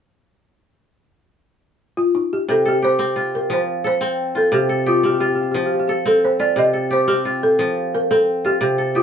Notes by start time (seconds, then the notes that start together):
1.97 F4
2.15 D#4
2.33 G4
2.49 C3 A4
2.65 G4 A4
2.82 G4 C5
2.99 C4
3.16 F4
3.35 A#4
3.50 F3 C5
3.84 A4 C5
4.01 C4
4.35 F4 A4
4.52 C3 G4
4.69 A4
4.86 F4 G4
5.03 C4 G4
5.13 G4
5.20 F4 G4
5.28 G4
5.35 G4
5.43 G4
5.51 F3 G4
5.66 G4
5.74 G4
5.80 G4
5.88 G4 A4
6.05 C4 A4
6.25 C5
6.40 F4 D5
6.56 C3 D#5
6.73 A4
6.91 G4 C5
7.08 C4 G4
7.25 F4
7.43 A4
7.59 F3
7.95 A#4
8.11 C4 A4
8.45 F4 G4
8.61 C3
8.78 A4
8.95 F4 G4